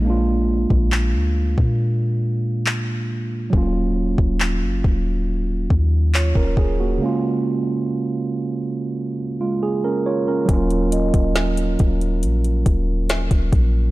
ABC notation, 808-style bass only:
X:1
M:4/4
L:1/16
Q:1/4=69
K:Ebm
V:1 name="808-style bass" clef=bass
B,,,3 B,,,2 =D,,2 B,,8- B,, | E,,,3 E,,,2 G,,, E,,,4 E,,3 E,,, E,,,2 | z16 | E,,,3 E,,,3 E,,,2 B,,,2 E,,,3 E,,, B,,,2 |]